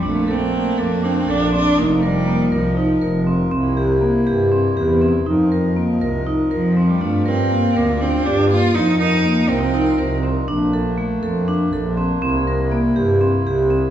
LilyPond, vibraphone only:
\new Staff \with { instrumentName = "Vibraphone" } { \time 7/8 \key f \mixolydian \tempo 4 = 121 d'8 a'8 a8 a'8 d'8 a'8 c'8 | ees'8 bes'8 bes8 bes'8 ees'8 bes'8 c'8 | c'8 g'8 bes8 g'8 c'8 g'8 c'8 | ees'8 bes'8 bes8 bes'8 ees'8 bes'8 c'8 |
d'8 bes'8 bes8 bes'8 d'8 g'8 bes8 | ees'8 bes'8 bes8 bes'8 ees'8 bes'8 c'8 | d'8 a'8 a8 a'8 d'8 a'8 c'8 | c'8 bes'8 bes8 g'8 c'8 g'8 c'8 | }